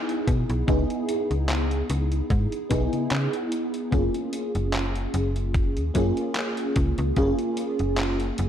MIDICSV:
0, 0, Header, 1, 4, 480
1, 0, Start_track
1, 0, Key_signature, 6, "major"
1, 0, Tempo, 810811
1, 405, Time_signature, 4, 2, 24, 8
1, 5025, End_track
2, 0, Start_track
2, 0, Title_t, "FM electric piano"
2, 0, Program_c, 0, 5
2, 0, Control_c, 0, 64, 127
2, 0, Note_on_c, 0, 59, 97
2, 0, Note_on_c, 0, 63, 90
2, 0, Note_on_c, 0, 64, 90
2, 0, Note_on_c, 0, 68, 110
2, 374, Note_off_c, 0, 59, 0
2, 376, Note_off_c, 0, 63, 0
2, 380, Note_off_c, 0, 64, 0
2, 382, Note_off_c, 0, 68, 0
2, 399, Note_on_c, 0, 59, 94
2, 402, Note_on_c, 0, 63, 87
2, 405, Note_on_c, 0, 64, 81
2, 407, Note_on_c, 0, 68, 102
2, 533, Note_off_c, 0, 59, 0
2, 534, Note_off_c, 0, 63, 0
2, 536, Note_off_c, 0, 64, 0
2, 536, Note_off_c, 0, 68, 0
2, 1595, Note_on_c, 0, 59, 95
2, 1600, Note_on_c, 0, 63, 85
2, 1607, Note_on_c, 0, 64, 88
2, 1614, Note_on_c, 0, 68, 102
2, 2294, Note_off_c, 0, 59, 0
2, 2296, Note_off_c, 0, 63, 0
2, 2300, Note_off_c, 0, 64, 0
2, 2303, Note_off_c, 0, 68, 0
2, 2315, Note_on_c, 0, 58, 71
2, 2321, Note_on_c, 0, 61, 67
2, 2326, Note_on_c, 0, 65, 67
2, 2333, Control_c, 0, 64, 0
2, 2333, Note_on_c, 0, 68, 77
2, 2420, Control_c, 0, 64, 127
2, 3494, Note_off_c, 0, 58, 0
2, 3496, Note_off_c, 0, 61, 0
2, 3499, Note_off_c, 0, 65, 0
2, 3502, Note_off_c, 0, 68, 0
2, 3517, Note_on_c, 0, 58, 99
2, 3524, Note_on_c, 0, 61, 90
2, 3529, Note_on_c, 0, 65, 90
2, 3535, Note_on_c, 0, 68, 106
2, 4215, Note_off_c, 0, 58, 0
2, 4218, Note_off_c, 0, 61, 0
2, 4221, Note_off_c, 0, 65, 0
2, 4224, Note_off_c, 0, 68, 0
2, 4243, Note_on_c, 0, 58, 93
2, 4245, Note_on_c, 0, 61, 84
2, 4248, Note_on_c, 0, 65, 89
2, 4251, Note_on_c, 0, 68, 106
2, 4374, Note_off_c, 0, 58, 0
2, 4376, Note_off_c, 0, 61, 0
2, 4377, Note_off_c, 0, 65, 0
2, 4379, Note_off_c, 0, 68, 0
2, 5025, End_track
3, 0, Start_track
3, 0, Title_t, "FM bass"
3, 0, Program_c, 1, 39
3, 163, Note_on_c, 1, 47, 93
3, 262, Note_off_c, 1, 47, 0
3, 294, Note_on_c, 1, 35, 97
3, 377, Note_off_c, 1, 35, 0
3, 403, Note_on_c, 1, 37, 100
3, 502, Note_off_c, 1, 37, 0
3, 774, Note_on_c, 1, 37, 76
3, 1081, Note_off_c, 1, 37, 0
3, 1124, Note_on_c, 1, 37, 98
3, 1311, Note_off_c, 1, 37, 0
3, 1363, Note_on_c, 1, 44, 106
3, 1462, Note_off_c, 1, 44, 0
3, 1603, Note_on_c, 1, 35, 98
3, 1702, Note_off_c, 1, 35, 0
3, 1734, Note_on_c, 1, 49, 45
3, 1822, Note_off_c, 1, 49, 0
3, 1843, Note_on_c, 1, 49, 92
3, 1942, Note_off_c, 1, 49, 0
3, 2323, Note_on_c, 1, 30, 101
3, 2422, Note_off_c, 1, 30, 0
3, 2694, Note_on_c, 1, 30, 80
3, 3001, Note_off_c, 1, 30, 0
3, 3044, Note_on_c, 1, 30, 102
3, 3416, Note_on_c, 1, 39, 98
3, 3424, Note_off_c, 1, 30, 0
3, 3498, Note_off_c, 1, 39, 0
3, 3524, Note_on_c, 1, 42, 93
3, 3623, Note_off_c, 1, 42, 0
3, 4003, Note_on_c, 1, 37, 97
3, 4103, Note_off_c, 1, 37, 0
3, 4135, Note_on_c, 1, 37, 98
3, 4218, Note_off_c, 1, 37, 0
3, 4243, Note_on_c, 1, 30, 104
3, 4343, Note_off_c, 1, 30, 0
3, 4616, Note_on_c, 1, 30, 78
3, 4922, Note_off_c, 1, 30, 0
3, 4967, Note_on_c, 1, 30, 97
3, 5025, Note_off_c, 1, 30, 0
3, 5025, End_track
4, 0, Start_track
4, 0, Title_t, "Drums"
4, 53, Note_on_c, 9, 42, 41
4, 112, Note_off_c, 9, 42, 0
4, 163, Note_on_c, 9, 36, 111
4, 163, Note_on_c, 9, 42, 96
4, 222, Note_off_c, 9, 36, 0
4, 223, Note_off_c, 9, 42, 0
4, 293, Note_on_c, 9, 42, 39
4, 353, Note_off_c, 9, 42, 0
4, 403, Note_on_c, 9, 36, 124
4, 403, Note_on_c, 9, 42, 64
4, 462, Note_off_c, 9, 36, 0
4, 462, Note_off_c, 9, 42, 0
4, 534, Note_on_c, 9, 42, 40
4, 593, Note_off_c, 9, 42, 0
4, 643, Note_on_c, 9, 42, 91
4, 703, Note_off_c, 9, 42, 0
4, 774, Note_on_c, 9, 42, 39
4, 834, Note_off_c, 9, 42, 0
4, 883, Note_on_c, 9, 39, 122
4, 883, Note_on_c, 9, 42, 66
4, 942, Note_off_c, 9, 39, 0
4, 942, Note_off_c, 9, 42, 0
4, 1014, Note_on_c, 9, 42, 38
4, 1073, Note_off_c, 9, 42, 0
4, 1122, Note_on_c, 9, 42, 87
4, 1181, Note_off_c, 9, 42, 0
4, 1253, Note_on_c, 9, 42, 40
4, 1312, Note_off_c, 9, 42, 0
4, 1363, Note_on_c, 9, 36, 122
4, 1363, Note_on_c, 9, 42, 65
4, 1422, Note_off_c, 9, 36, 0
4, 1422, Note_off_c, 9, 42, 0
4, 1493, Note_on_c, 9, 42, 38
4, 1553, Note_off_c, 9, 42, 0
4, 1602, Note_on_c, 9, 42, 96
4, 1603, Note_on_c, 9, 36, 62
4, 1661, Note_off_c, 9, 42, 0
4, 1662, Note_off_c, 9, 36, 0
4, 1733, Note_on_c, 9, 42, 39
4, 1793, Note_off_c, 9, 42, 0
4, 1842, Note_on_c, 9, 39, 117
4, 1842, Note_on_c, 9, 42, 64
4, 1902, Note_off_c, 9, 39, 0
4, 1902, Note_off_c, 9, 42, 0
4, 1974, Note_on_c, 9, 42, 40
4, 2033, Note_off_c, 9, 42, 0
4, 2083, Note_on_c, 9, 42, 96
4, 2143, Note_off_c, 9, 42, 0
4, 2213, Note_on_c, 9, 42, 39
4, 2272, Note_off_c, 9, 42, 0
4, 2323, Note_on_c, 9, 36, 124
4, 2323, Note_on_c, 9, 42, 59
4, 2382, Note_off_c, 9, 36, 0
4, 2382, Note_off_c, 9, 42, 0
4, 2453, Note_on_c, 9, 42, 38
4, 2512, Note_off_c, 9, 42, 0
4, 2562, Note_on_c, 9, 42, 87
4, 2621, Note_off_c, 9, 42, 0
4, 2694, Note_on_c, 9, 42, 39
4, 2753, Note_off_c, 9, 42, 0
4, 2803, Note_on_c, 9, 39, 121
4, 2803, Note_on_c, 9, 42, 62
4, 2863, Note_off_c, 9, 39, 0
4, 2863, Note_off_c, 9, 42, 0
4, 2934, Note_on_c, 9, 42, 38
4, 2993, Note_off_c, 9, 42, 0
4, 3043, Note_on_c, 9, 42, 85
4, 3102, Note_off_c, 9, 42, 0
4, 3173, Note_on_c, 9, 42, 37
4, 3232, Note_off_c, 9, 42, 0
4, 3283, Note_on_c, 9, 36, 119
4, 3283, Note_on_c, 9, 42, 63
4, 3342, Note_off_c, 9, 36, 0
4, 3342, Note_off_c, 9, 42, 0
4, 3414, Note_on_c, 9, 42, 36
4, 3473, Note_off_c, 9, 42, 0
4, 3522, Note_on_c, 9, 42, 90
4, 3523, Note_on_c, 9, 36, 59
4, 3581, Note_off_c, 9, 42, 0
4, 3582, Note_off_c, 9, 36, 0
4, 3653, Note_on_c, 9, 42, 40
4, 3712, Note_off_c, 9, 42, 0
4, 3761, Note_on_c, 9, 39, 119
4, 3761, Note_on_c, 9, 42, 62
4, 3820, Note_off_c, 9, 39, 0
4, 3820, Note_off_c, 9, 42, 0
4, 3891, Note_on_c, 9, 42, 40
4, 3950, Note_off_c, 9, 42, 0
4, 4001, Note_on_c, 9, 42, 93
4, 4003, Note_on_c, 9, 36, 104
4, 4060, Note_off_c, 9, 42, 0
4, 4062, Note_off_c, 9, 36, 0
4, 4132, Note_on_c, 9, 42, 38
4, 4191, Note_off_c, 9, 42, 0
4, 4241, Note_on_c, 9, 42, 62
4, 4243, Note_on_c, 9, 36, 114
4, 4301, Note_off_c, 9, 42, 0
4, 4302, Note_off_c, 9, 36, 0
4, 4372, Note_on_c, 9, 42, 37
4, 4432, Note_off_c, 9, 42, 0
4, 4481, Note_on_c, 9, 42, 87
4, 4541, Note_off_c, 9, 42, 0
4, 4613, Note_on_c, 9, 42, 38
4, 4672, Note_off_c, 9, 42, 0
4, 4722, Note_on_c, 9, 39, 114
4, 4722, Note_on_c, 9, 42, 61
4, 4781, Note_off_c, 9, 39, 0
4, 4781, Note_off_c, 9, 42, 0
4, 4853, Note_on_c, 9, 42, 36
4, 4912, Note_off_c, 9, 42, 0
4, 4961, Note_on_c, 9, 42, 85
4, 5020, Note_off_c, 9, 42, 0
4, 5025, End_track
0, 0, End_of_file